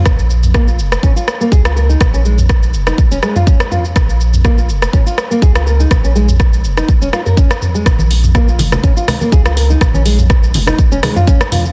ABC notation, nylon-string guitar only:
X:1
M:4/4
L:1/16
Q:"Swing 16ths" 1/4=123
K:Bbm
V:1 name="Nylon-string guitar"
z4 B, F z2 D F z B, A F B E | z D A, z4 E z D A, F D z F z | z4 B, F z2 D F z B, A F B E | z D A, z4 E z D F B D z2 A, |
z4 B, F z2 D F z B, A F B E | z D A, z4 E z D A, F D z F z |]